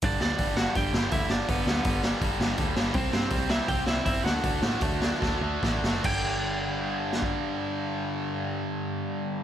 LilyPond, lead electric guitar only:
\new Staff \with { instrumentName = "Lead electric guitar" } { \time 4/4 \key g \major \tempo 4 = 157 <d' d''>8 <d' d''>4 <fis' fis''>8 <g' g''>4 <e' e''>8 <d' d''>8 | <b b'>4. r2 r8 | <c' c''>8 <c' c''>4 <e' e''>8 <g' g''>8 <e' e''>8 <e' e''>8 <fis' fis''>8~ | <fis' fis''>2. r4 |
g''1~ | g''1 | }